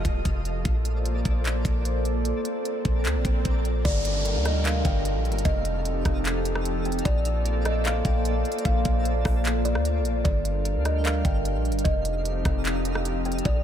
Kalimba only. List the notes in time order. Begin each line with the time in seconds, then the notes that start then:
3.85 D5
4.46 D#5
4.65 F5
4.86 G5
5.45 D#5
6.86 G5
7.05 D5
7.66 D#5
7.86 F5
8.05 G5
8.65 F5
9.65 D5
10.24 D5
10.86 D#5
11.05 F5
11.25 G5
11.85 D#5
13.26 G5
13.46 D5